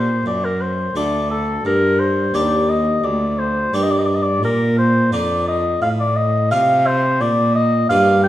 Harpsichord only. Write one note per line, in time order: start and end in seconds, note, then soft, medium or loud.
0.00 0.22 A#2 medium
0.26 0.92 F#2 medium
0.96 1.61 D2 soft
0.96 1.46 A3 soft
0.96 1.46 D4 soft
0.96 1.46 A4 soft
1.65 2.31 G2 medium
2.34 3.00 D#2 soft
2.34 2.84 A#3 soft
2.34 2.84 D4 soft
2.34 2.85 G4 soft
3.04 3.69 D2 medium
3.73 4.39 G2 soft
3.73 4.24 A#3 soft
3.73 4.24 D4 soft
3.73 4.24 G4 soft
4.43 5.08 A#2 medium
5.12 5.78 F2 medium
5.12 5.62 A#3 soft
5.12 5.63 D4 soft
5.12 5.63 F4 medium
5.82 6.47 A2 medium
6.51 7.17 C3 soft
6.51 7.01 C4 soft
6.51 7.02 F4 soft
7.21 7.86 A#2 medium
7.90 8.28 G2 medium
7.90 8.28 A#3 medium
7.90 8.28 D4 medium
7.90 8.28 F4 medium